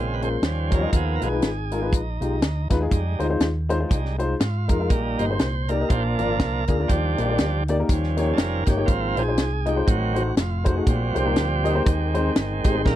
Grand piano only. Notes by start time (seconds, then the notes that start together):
Already playing: A#2
0.21 G#3 C#4 F4 A#4
0.43 D#3
0.71 G3 D#4 F4 C#5
0.81 G3 D#4 F4 D#5
0.92 D#3
1.21 G#3 D#4 F4 B4
1.32 G#3 D#4 F4 B4
1.71 G#3 D#4 F4 A#4
1.82 G#3 D#4 F4 B4
2.21 G#3 D#4 F4 G4
2.70 G#3 D#4 F4 B4
2.81 G#3 D#4 F4 G#4
3.19 G#3 D#4 F4 C5
3.29 G#3 D#4 F4 C5
3.69 G#3 D#4 F4 C5
3.80 G#3 D#4 F4
4.18 G#3 D#4 F4 C5
4.68 G#3 D#4 F4 A#4
4.79 G#3 D#4 F4 A#4
4.91 A#2
5.19 A#3 D#4 G4 D#5
5.29 A#3 D#4 G4 C5
5.69 A#3 D#4 G4 D5
5.80 A#3 D#4 G4 D#5
5.90 A#2
6.18 A#3 D4 F4 D5
6.68 A#3 D4 F4 G#4
6.79 A#3 D4 F4 D5
6.90 D#3
7.17 A#3 D#4 G4 D5
7.29 A#3 D#4 G4 D5
7.69 A#3 D#4 G4 D5
7.79 A#3 D#4 G4 A#4
7.90 D#3
8.17 A#3 D#4 G4 C#5
8.67 A#3 D#4 G4 C#5
8.77 A#3 D#4 G4 C#5
8.89 G#2
9.16 G#3 D#4 F4 C5
9.27 G#3 D#4 F4 C5
9.65 G#3 D#4 F4 D#5
9.76 G#3 D#4 F4 C5
9.86 A2
10.14 A3 D#4 F#4 C5
10.64 A3 D#4 F#4 C5
10.75 A3 D#4 F#4 G#4
10.85 A#2
11.14 A#3 D#4 G4 C5
11.24 A#3 D#4 G4 A#4
11.64 A#3 D#4 G4 D#5
11.74 A#3 D#4 G4 C5
11.86 D#3
12.14 G#3 C4 D#4 C5
12.64 G#3 C4 D#4 G4
12.75 G#3 C4 D#4 G#4
12.86 A#2